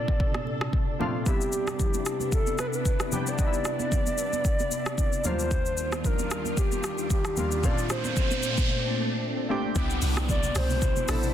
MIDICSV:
0, 0, Header, 1, 8, 480
1, 0, Start_track
1, 0, Key_signature, 0, "major"
1, 0, Tempo, 530973
1, 1142, Time_signature, 4, 2, 24, 8
1, 10249, End_track
2, 0, Start_track
2, 0, Title_t, "Soft synth lead"
2, 0, Program_c, 0, 80
2, 0, Note_on_c, 0, 74, 109
2, 904, Note_off_c, 0, 74, 0
2, 1149, Note_on_c, 0, 67, 102
2, 2069, Note_off_c, 0, 67, 0
2, 2111, Note_on_c, 0, 69, 99
2, 2330, Note_off_c, 0, 69, 0
2, 2350, Note_on_c, 0, 71, 104
2, 2414, Note_on_c, 0, 69, 88
2, 2427, Note_off_c, 0, 71, 0
2, 2485, Note_on_c, 0, 71, 106
2, 2498, Note_off_c, 0, 69, 0
2, 2963, Note_on_c, 0, 74, 116
2, 2977, Note_off_c, 0, 71, 0
2, 4752, Note_on_c, 0, 72, 119
2, 4766, Note_off_c, 0, 74, 0
2, 5475, Note_on_c, 0, 70, 100
2, 5488, Note_off_c, 0, 72, 0
2, 5948, Note_off_c, 0, 70, 0
2, 5954, Note_on_c, 0, 67, 97
2, 6395, Note_off_c, 0, 67, 0
2, 6432, Note_on_c, 0, 67, 94
2, 6911, Note_on_c, 0, 74, 107
2, 6924, Note_off_c, 0, 67, 0
2, 7146, Note_off_c, 0, 74, 0
2, 7152, Note_on_c, 0, 72, 100
2, 8551, Note_off_c, 0, 72, 0
2, 9310, Note_on_c, 0, 74, 106
2, 9551, Note_on_c, 0, 72, 102
2, 9565, Note_off_c, 0, 74, 0
2, 10249, Note_off_c, 0, 72, 0
2, 10249, End_track
3, 0, Start_track
3, 0, Title_t, "Synth keys"
3, 0, Program_c, 1, 88
3, 0, Control_c, 1, 64, 127
3, 0, Note_on_c, 1, 46, 71
3, 0, Note_on_c, 1, 57, 64
3, 0, Note_on_c, 1, 60, 68
3, 0, Note_on_c, 1, 62, 68
3, 0, Note_on_c, 1, 65, 81
3, 897, Note_off_c, 1, 46, 0
3, 897, Note_on_c, 1, 46, 86
3, 900, Note_off_c, 1, 57, 0
3, 900, Note_on_c, 1, 57, 81
3, 906, Note_off_c, 1, 60, 0
3, 906, Note_on_c, 1, 60, 81
3, 911, Note_off_c, 1, 62, 0
3, 911, Note_on_c, 1, 62, 80
3, 917, Note_off_c, 1, 65, 0
3, 917, Note_on_c, 1, 65, 96
3, 1096, Note_off_c, 1, 46, 0
3, 1098, Note_off_c, 1, 57, 0
3, 1101, Note_off_c, 1, 60, 0
3, 1103, Note_off_c, 1, 62, 0
3, 1106, Note_off_c, 1, 65, 0
3, 1137, Note_on_c, 1, 48, 70
3, 1142, Note_on_c, 1, 55, 64
3, 1147, Note_on_c, 1, 59, 66
3, 1153, Note_on_c, 1, 62, 64
3, 1155, Control_c, 1, 64, 0
3, 1157, Note_on_c, 1, 64, 79
3, 1325, Control_c, 1, 64, 127
3, 1912, Note_off_c, 1, 48, 0
3, 1914, Note_off_c, 1, 55, 0
3, 1917, Note_off_c, 1, 59, 0
3, 1920, Note_off_c, 1, 62, 0
3, 1922, Note_off_c, 1, 64, 0
3, 2818, Note_on_c, 1, 48, 75
3, 2823, Note_on_c, 1, 55, 68
3, 2828, Note_on_c, 1, 59, 71
3, 2833, Note_on_c, 1, 62, 70
3, 2839, Note_on_c, 1, 67, 82
3, 3017, Note_off_c, 1, 48, 0
3, 3019, Note_off_c, 1, 55, 0
3, 3022, Note_off_c, 1, 59, 0
3, 3024, Note_off_c, 1, 62, 0
3, 3027, Note_off_c, 1, 67, 0
3, 3058, Note_on_c, 1, 48, 74
3, 3064, Note_on_c, 1, 55, 65
3, 3068, Note_on_c, 1, 59, 66
3, 3073, Note_on_c, 1, 62, 65
3, 3078, Note_on_c, 1, 63, 65
3, 3133, Note_off_c, 1, 63, 0
3, 3136, Note_on_c, 1, 64, 79
3, 3833, Note_off_c, 1, 48, 0
3, 3836, Note_off_c, 1, 55, 0
3, 3838, Note_off_c, 1, 59, 0
3, 3840, Note_off_c, 1, 62, 0
3, 3872, Note_off_c, 1, 64, 0
3, 4739, Note_on_c, 1, 39, 82
3, 4744, Note_on_c, 1, 54, 58
3, 4749, Note_on_c, 1, 58, 69
3, 4753, Control_c, 1, 64, 0
3, 4753, Note_on_c, 1, 62, 72
3, 4758, Note_on_c, 1, 65, 88
3, 4802, Note_on_c, 1, 55, 69
3, 4806, Note_off_c, 1, 54, 0
3, 4908, Control_c, 1, 64, 127
3, 5513, Note_off_c, 1, 39, 0
3, 5518, Note_off_c, 1, 58, 0
3, 5520, Note_off_c, 1, 62, 0
3, 5523, Note_off_c, 1, 65, 0
3, 5545, Note_off_c, 1, 55, 0
3, 6660, Note_on_c, 1, 39, 74
3, 6664, Note_on_c, 1, 55, 68
3, 6669, Note_on_c, 1, 58, 67
3, 6675, Note_on_c, 1, 62, 69
3, 6680, Note_on_c, 1, 65, 84
3, 6858, Note_off_c, 1, 39, 0
3, 6860, Note_off_c, 1, 55, 0
3, 6862, Note_off_c, 1, 58, 0
3, 6865, Note_off_c, 1, 62, 0
3, 6868, Note_off_c, 1, 65, 0
3, 6898, Note_on_c, 1, 46, 75
3, 6904, Note_on_c, 1, 57, 65
3, 6909, Note_on_c, 1, 60, 67
3, 6914, Note_on_c, 1, 61, 53
3, 6915, Control_c, 1, 64, 0
3, 6918, Note_on_c, 1, 65, 83
3, 6971, Note_off_c, 1, 61, 0
3, 6972, Note_on_c, 1, 62, 68
3, 7051, Control_c, 1, 64, 127
3, 7673, Note_off_c, 1, 46, 0
3, 7676, Note_off_c, 1, 57, 0
3, 7678, Note_off_c, 1, 60, 0
3, 7683, Note_off_c, 1, 65, 0
3, 7710, Note_off_c, 1, 62, 0
3, 8578, Note_on_c, 1, 46, 86
3, 8583, Note_on_c, 1, 57, 77
3, 8588, Note_on_c, 1, 60, 78
3, 8594, Note_on_c, 1, 62, 79
3, 8598, Note_on_c, 1, 67, 96
3, 8777, Note_off_c, 1, 46, 0
3, 8779, Note_off_c, 1, 57, 0
3, 8782, Note_off_c, 1, 60, 0
3, 8784, Note_off_c, 1, 62, 0
3, 8787, Note_off_c, 1, 67, 0
3, 8817, Note_on_c, 1, 59, 92
3, 8824, Note_on_c, 1, 62, 79
3, 8830, Note_on_c, 1, 64, 78
3, 8835, Control_c, 1, 64, 0
3, 8837, Note_on_c, 1, 67, 96
3, 8984, Control_c, 1, 64, 127
3, 9592, Note_off_c, 1, 59, 0
3, 9596, Note_off_c, 1, 62, 0
3, 9599, Note_off_c, 1, 64, 0
3, 9602, Note_off_c, 1, 67, 0
3, 10019, Note_on_c, 1, 59, 76
3, 10026, Note_on_c, 1, 62, 70
3, 10033, Note_on_c, 1, 64, 69
3, 10040, Note_on_c, 1, 69, 82
3, 10249, Note_off_c, 1, 59, 0
3, 10249, Note_off_c, 1, 62, 0
3, 10249, Note_off_c, 1, 64, 0
3, 10249, Note_off_c, 1, 69, 0
3, 10249, End_track
4, 0, Start_track
4, 0, Title_t, "String machine"
4, 0, Program_c, 2, 50
4, 0, Note_on_c, 2, 46, 74
4, 0, Note_on_c, 2, 48, 81
4, 0, Note_on_c, 2, 62, 76
4, 0, Note_on_c, 2, 69, 89
4, 1122, Note_off_c, 2, 46, 0
4, 1122, Note_off_c, 2, 69, 0
4, 1139, Note_on_c, 2, 64, 85
4, 1141, Note_on_c, 2, 59, 71
4, 4704, Note_off_c, 2, 64, 0
4, 4705, Note_off_c, 2, 48, 0
4, 4705, Note_off_c, 2, 59, 0
4, 4706, Note_off_c, 2, 62, 0
4, 4739, Note_on_c, 2, 55, 78
4, 4739, Note_on_c, 2, 62, 77
4, 4741, Note_on_c, 2, 51, 79
4, 4741, Note_on_c, 2, 65, 86
4, 6879, Note_off_c, 2, 55, 0
4, 6879, Note_off_c, 2, 62, 0
4, 6880, Note_off_c, 2, 51, 0
4, 6880, Note_off_c, 2, 65, 0
4, 6902, Note_on_c, 2, 62, 87
4, 6903, Note_on_c, 2, 46, 80
4, 6904, Note_on_c, 2, 57, 72
4, 6904, Note_on_c, 2, 60, 68
4, 8803, Note_off_c, 2, 46, 0
4, 8803, Note_off_c, 2, 62, 0
4, 8804, Note_off_c, 2, 57, 0
4, 8804, Note_off_c, 2, 60, 0
4, 8822, Note_on_c, 2, 48, 83
4, 8823, Note_on_c, 2, 47, 77
4, 8823, Note_on_c, 2, 64, 88
4, 8824, Note_on_c, 2, 62, 76
4, 10249, Note_off_c, 2, 47, 0
4, 10249, Note_off_c, 2, 48, 0
4, 10249, Note_off_c, 2, 62, 0
4, 10249, Note_off_c, 2, 64, 0
4, 10249, End_track
5, 0, Start_track
5, 0, Title_t, "Log drum bass"
5, 0, Program_c, 3, 39
5, 8821, Note_on_c, 3, 36, 117
5, 9046, Note_off_c, 3, 36, 0
5, 9061, Note_on_c, 3, 36, 103
5, 9511, Note_off_c, 3, 36, 0
5, 9542, Note_on_c, 3, 36, 99
5, 9890, Note_off_c, 3, 36, 0
5, 10023, Note_on_c, 3, 33, 88
5, 10249, Note_off_c, 3, 33, 0
5, 10249, End_track
6, 0, Start_track
6, 0, Title_t, "Downlifter"
6, 0, Program_c, 4, 103
6, 8821, Note_on_c, 4, 60, 82
6, 10249, Note_off_c, 4, 60, 0
6, 10249, End_track
7, 0, Start_track
7, 0, Title_t, "Riser"
7, 0, Program_c, 5, 103
7, 4981, Note_on_c, 5, 60, 81
7, 7861, Note_off_c, 5, 60, 0
7, 10249, End_track
8, 0, Start_track
8, 0, Title_t, "Drums"
8, 74, Note_on_c, 9, 63, 70
8, 75, Note_on_c, 9, 36, 104
8, 164, Note_off_c, 9, 63, 0
8, 165, Note_off_c, 9, 36, 0
8, 180, Note_on_c, 9, 36, 113
8, 270, Note_off_c, 9, 36, 0
8, 312, Note_on_c, 9, 37, 92
8, 318, Note_on_c, 9, 63, 77
8, 402, Note_off_c, 9, 37, 0
8, 408, Note_off_c, 9, 63, 0
8, 423, Note_on_c, 9, 63, 62
8, 513, Note_off_c, 9, 63, 0
8, 553, Note_on_c, 9, 37, 101
8, 644, Note_off_c, 9, 37, 0
8, 661, Note_on_c, 9, 36, 89
8, 751, Note_off_c, 9, 36, 0
8, 910, Note_on_c, 9, 63, 67
8, 910, Note_on_c, 9, 64, 68
8, 1000, Note_off_c, 9, 63, 0
8, 1000, Note_off_c, 9, 64, 0
8, 1141, Note_on_c, 9, 82, 76
8, 1142, Note_on_c, 9, 36, 111
8, 1232, Note_off_c, 9, 36, 0
8, 1232, Note_off_c, 9, 82, 0
8, 1274, Note_on_c, 9, 82, 54
8, 1365, Note_off_c, 9, 82, 0
8, 1378, Note_on_c, 9, 82, 86
8, 1468, Note_off_c, 9, 82, 0
8, 1512, Note_on_c, 9, 63, 69
8, 1513, Note_on_c, 9, 82, 49
8, 1515, Note_on_c, 9, 37, 94
8, 1602, Note_off_c, 9, 63, 0
8, 1603, Note_off_c, 9, 82, 0
8, 1605, Note_off_c, 9, 37, 0
8, 1623, Note_on_c, 9, 36, 84
8, 1623, Note_on_c, 9, 82, 74
8, 1629, Note_on_c, 9, 64, 63
8, 1713, Note_off_c, 9, 36, 0
8, 1713, Note_off_c, 9, 82, 0
8, 1720, Note_off_c, 9, 64, 0
8, 1753, Note_on_c, 9, 82, 65
8, 1756, Note_on_c, 9, 63, 74
8, 1843, Note_off_c, 9, 82, 0
8, 1846, Note_off_c, 9, 63, 0
8, 1861, Note_on_c, 9, 82, 92
8, 1865, Note_on_c, 9, 37, 92
8, 1951, Note_off_c, 9, 82, 0
8, 1956, Note_off_c, 9, 37, 0
8, 1991, Note_on_c, 9, 63, 74
8, 1993, Note_on_c, 9, 82, 51
8, 2082, Note_off_c, 9, 63, 0
8, 2084, Note_off_c, 9, 82, 0
8, 2100, Note_on_c, 9, 36, 107
8, 2100, Note_on_c, 9, 82, 79
8, 2190, Note_off_c, 9, 36, 0
8, 2190, Note_off_c, 9, 82, 0
8, 2229, Note_on_c, 9, 82, 58
8, 2237, Note_on_c, 9, 63, 76
8, 2319, Note_off_c, 9, 82, 0
8, 2328, Note_off_c, 9, 63, 0
8, 2336, Note_on_c, 9, 82, 97
8, 2339, Note_on_c, 9, 37, 98
8, 2342, Note_on_c, 9, 63, 60
8, 2426, Note_off_c, 9, 82, 0
8, 2429, Note_off_c, 9, 37, 0
8, 2432, Note_off_c, 9, 63, 0
8, 2469, Note_on_c, 9, 82, 55
8, 2559, Note_off_c, 9, 82, 0
8, 2580, Note_on_c, 9, 36, 85
8, 2581, Note_on_c, 9, 82, 80
8, 2671, Note_off_c, 9, 36, 0
8, 2672, Note_off_c, 9, 82, 0
8, 2711, Note_on_c, 9, 37, 91
8, 2712, Note_on_c, 9, 82, 52
8, 2802, Note_off_c, 9, 37, 0
8, 2802, Note_off_c, 9, 82, 0
8, 2821, Note_on_c, 9, 82, 98
8, 2827, Note_on_c, 9, 63, 71
8, 2827, Note_on_c, 9, 64, 70
8, 2912, Note_off_c, 9, 82, 0
8, 2918, Note_off_c, 9, 63, 0
8, 2918, Note_off_c, 9, 64, 0
8, 2954, Note_on_c, 9, 82, 67
8, 3044, Note_off_c, 9, 82, 0
8, 3061, Note_on_c, 9, 36, 111
8, 3061, Note_on_c, 9, 82, 76
8, 3152, Note_off_c, 9, 36, 0
8, 3152, Note_off_c, 9, 82, 0
8, 3194, Note_on_c, 9, 82, 53
8, 3284, Note_off_c, 9, 82, 0
8, 3297, Note_on_c, 9, 82, 80
8, 3302, Note_on_c, 9, 37, 89
8, 3388, Note_off_c, 9, 82, 0
8, 3392, Note_off_c, 9, 37, 0
8, 3431, Note_on_c, 9, 63, 70
8, 3432, Note_on_c, 9, 82, 49
8, 3522, Note_off_c, 9, 63, 0
8, 3522, Note_off_c, 9, 82, 0
8, 3543, Note_on_c, 9, 36, 86
8, 3544, Note_on_c, 9, 82, 74
8, 3551, Note_on_c, 9, 64, 64
8, 3633, Note_off_c, 9, 36, 0
8, 3634, Note_off_c, 9, 82, 0
8, 3642, Note_off_c, 9, 64, 0
8, 3674, Note_on_c, 9, 82, 64
8, 3677, Note_on_c, 9, 63, 72
8, 3764, Note_off_c, 9, 82, 0
8, 3768, Note_off_c, 9, 63, 0
8, 3779, Note_on_c, 9, 82, 89
8, 3869, Note_off_c, 9, 82, 0
8, 3914, Note_on_c, 9, 63, 74
8, 3915, Note_on_c, 9, 82, 52
8, 4004, Note_off_c, 9, 63, 0
8, 4006, Note_off_c, 9, 82, 0
8, 4021, Note_on_c, 9, 36, 115
8, 4022, Note_on_c, 9, 82, 81
8, 4111, Note_off_c, 9, 36, 0
8, 4112, Note_off_c, 9, 82, 0
8, 4152, Note_on_c, 9, 82, 55
8, 4159, Note_on_c, 9, 63, 77
8, 4243, Note_off_c, 9, 82, 0
8, 4250, Note_off_c, 9, 63, 0
8, 4262, Note_on_c, 9, 63, 60
8, 4262, Note_on_c, 9, 82, 103
8, 4352, Note_off_c, 9, 82, 0
8, 4353, Note_off_c, 9, 63, 0
8, 4393, Note_on_c, 9, 82, 51
8, 4396, Note_on_c, 9, 37, 104
8, 4484, Note_off_c, 9, 82, 0
8, 4486, Note_off_c, 9, 37, 0
8, 4501, Note_on_c, 9, 36, 89
8, 4504, Note_on_c, 9, 82, 79
8, 4592, Note_off_c, 9, 36, 0
8, 4594, Note_off_c, 9, 82, 0
8, 4634, Note_on_c, 9, 82, 54
8, 4724, Note_off_c, 9, 82, 0
8, 4741, Note_on_c, 9, 82, 99
8, 4750, Note_on_c, 9, 63, 69
8, 4750, Note_on_c, 9, 64, 71
8, 4831, Note_off_c, 9, 82, 0
8, 4840, Note_off_c, 9, 63, 0
8, 4840, Note_off_c, 9, 64, 0
8, 4874, Note_on_c, 9, 82, 64
8, 4965, Note_off_c, 9, 82, 0
8, 4982, Note_on_c, 9, 36, 107
8, 4982, Note_on_c, 9, 82, 76
8, 5073, Note_off_c, 9, 36, 0
8, 5073, Note_off_c, 9, 82, 0
8, 5114, Note_on_c, 9, 82, 54
8, 5205, Note_off_c, 9, 82, 0
8, 5220, Note_on_c, 9, 82, 86
8, 5310, Note_off_c, 9, 82, 0
8, 5352, Note_on_c, 9, 63, 72
8, 5354, Note_on_c, 9, 82, 47
8, 5356, Note_on_c, 9, 37, 89
8, 5442, Note_off_c, 9, 63, 0
8, 5445, Note_off_c, 9, 82, 0
8, 5446, Note_off_c, 9, 37, 0
8, 5464, Note_on_c, 9, 36, 86
8, 5465, Note_on_c, 9, 82, 73
8, 5469, Note_on_c, 9, 64, 66
8, 5554, Note_off_c, 9, 36, 0
8, 5555, Note_off_c, 9, 82, 0
8, 5559, Note_off_c, 9, 64, 0
8, 5594, Note_on_c, 9, 82, 65
8, 5596, Note_on_c, 9, 63, 76
8, 5684, Note_off_c, 9, 82, 0
8, 5686, Note_off_c, 9, 63, 0
8, 5703, Note_on_c, 9, 82, 85
8, 5708, Note_on_c, 9, 37, 97
8, 5793, Note_off_c, 9, 82, 0
8, 5798, Note_off_c, 9, 37, 0
8, 5833, Note_on_c, 9, 63, 74
8, 5836, Note_on_c, 9, 82, 53
8, 5924, Note_off_c, 9, 63, 0
8, 5926, Note_off_c, 9, 82, 0
8, 5942, Note_on_c, 9, 36, 112
8, 5943, Note_on_c, 9, 82, 85
8, 6032, Note_off_c, 9, 36, 0
8, 6034, Note_off_c, 9, 82, 0
8, 6073, Note_on_c, 9, 82, 59
8, 6078, Note_on_c, 9, 63, 75
8, 6163, Note_off_c, 9, 82, 0
8, 6169, Note_off_c, 9, 63, 0
8, 6180, Note_on_c, 9, 82, 98
8, 6181, Note_on_c, 9, 63, 65
8, 6183, Note_on_c, 9, 37, 92
8, 6270, Note_off_c, 9, 82, 0
8, 6272, Note_off_c, 9, 63, 0
8, 6273, Note_off_c, 9, 37, 0
8, 6311, Note_on_c, 9, 82, 52
8, 6401, Note_off_c, 9, 82, 0
8, 6421, Note_on_c, 9, 36, 89
8, 6422, Note_on_c, 9, 82, 80
8, 6511, Note_off_c, 9, 36, 0
8, 6513, Note_off_c, 9, 82, 0
8, 6551, Note_on_c, 9, 37, 94
8, 6552, Note_on_c, 9, 82, 53
8, 6642, Note_off_c, 9, 37, 0
8, 6642, Note_off_c, 9, 82, 0
8, 6659, Note_on_c, 9, 82, 97
8, 6667, Note_on_c, 9, 63, 69
8, 6667, Note_on_c, 9, 64, 73
8, 6750, Note_off_c, 9, 82, 0
8, 6758, Note_off_c, 9, 63, 0
8, 6758, Note_off_c, 9, 64, 0
8, 6794, Note_on_c, 9, 82, 66
8, 6884, Note_off_c, 9, 82, 0
8, 6903, Note_on_c, 9, 36, 108
8, 6903, Note_on_c, 9, 82, 78
8, 6993, Note_off_c, 9, 36, 0
8, 6993, Note_off_c, 9, 82, 0
8, 7035, Note_on_c, 9, 82, 54
8, 7125, Note_off_c, 9, 82, 0
8, 7137, Note_on_c, 9, 82, 88
8, 7142, Note_on_c, 9, 37, 91
8, 7228, Note_off_c, 9, 82, 0
8, 7232, Note_off_c, 9, 37, 0
8, 7271, Note_on_c, 9, 63, 71
8, 7272, Note_on_c, 9, 82, 48
8, 7361, Note_off_c, 9, 63, 0
8, 7363, Note_off_c, 9, 82, 0
8, 7383, Note_on_c, 9, 36, 84
8, 7383, Note_on_c, 9, 82, 71
8, 7388, Note_on_c, 9, 64, 62
8, 7473, Note_off_c, 9, 82, 0
8, 7474, Note_off_c, 9, 36, 0
8, 7479, Note_off_c, 9, 64, 0
8, 7512, Note_on_c, 9, 82, 61
8, 7514, Note_on_c, 9, 63, 75
8, 7602, Note_off_c, 9, 82, 0
8, 7605, Note_off_c, 9, 63, 0
8, 7618, Note_on_c, 9, 82, 88
8, 7709, Note_off_c, 9, 82, 0
8, 7751, Note_on_c, 9, 63, 74
8, 7751, Note_on_c, 9, 82, 54
8, 7755, Note_on_c, 9, 36, 99
8, 7841, Note_off_c, 9, 63, 0
8, 7842, Note_off_c, 9, 82, 0
8, 7845, Note_off_c, 9, 36, 0
8, 8820, Note_on_c, 9, 82, 78
8, 8821, Note_on_c, 9, 36, 116
8, 8910, Note_off_c, 9, 82, 0
8, 8912, Note_off_c, 9, 36, 0
8, 8951, Note_on_c, 9, 82, 56
8, 9041, Note_off_c, 9, 82, 0
8, 9056, Note_on_c, 9, 46, 52
8, 9056, Note_on_c, 9, 82, 91
8, 9146, Note_off_c, 9, 46, 0
8, 9146, Note_off_c, 9, 82, 0
8, 9190, Note_on_c, 9, 63, 78
8, 9192, Note_on_c, 9, 82, 51
8, 9194, Note_on_c, 9, 37, 96
8, 9280, Note_off_c, 9, 63, 0
8, 9282, Note_off_c, 9, 82, 0
8, 9284, Note_off_c, 9, 37, 0
8, 9302, Note_on_c, 9, 36, 86
8, 9303, Note_on_c, 9, 82, 75
8, 9307, Note_on_c, 9, 64, 65
8, 9393, Note_off_c, 9, 36, 0
8, 9393, Note_off_c, 9, 82, 0
8, 9398, Note_off_c, 9, 64, 0
8, 9431, Note_on_c, 9, 82, 69
8, 9432, Note_on_c, 9, 63, 75
8, 9522, Note_off_c, 9, 82, 0
8, 9523, Note_off_c, 9, 63, 0
8, 9540, Note_on_c, 9, 46, 55
8, 9540, Note_on_c, 9, 82, 97
8, 9545, Note_on_c, 9, 37, 94
8, 9631, Note_off_c, 9, 46, 0
8, 9631, Note_off_c, 9, 82, 0
8, 9635, Note_off_c, 9, 37, 0
8, 9670, Note_on_c, 9, 63, 75
8, 9673, Note_on_c, 9, 82, 55
8, 9760, Note_off_c, 9, 63, 0
8, 9763, Note_off_c, 9, 82, 0
8, 9780, Note_on_c, 9, 36, 112
8, 9781, Note_on_c, 9, 82, 82
8, 9871, Note_off_c, 9, 36, 0
8, 9871, Note_off_c, 9, 82, 0
8, 9910, Note_on_c, 9, 82, 58
8, 9916, Note_on_c, 9, 63, 79
8, 10000, Note_off_c, 9, 82, 0
8, 10006, Note_off_c, 9, 63, 0
8, 10019, Note_on_c, 9, 63, 61
8, 10020, Note_on_c, 9, 46, 63
8, 10020, Note_on_c, 9, 82, 107
8, 10023, Note_on_c, 9, 37, 98
8, 10109, Note_off_c, 9, 63, 0
8, 10110, Note_off_c, 9, 46, 0
8, 10110, Note_off_c, 9, 82, 0
8, 10113, Note_off_c, 9, 37, 0
8, 10152, Note_on_c, 9, 82, 56
8, 10242, Note_off_c, 9, 82, 0
8, 10249, End_track
0, 0, End_of_file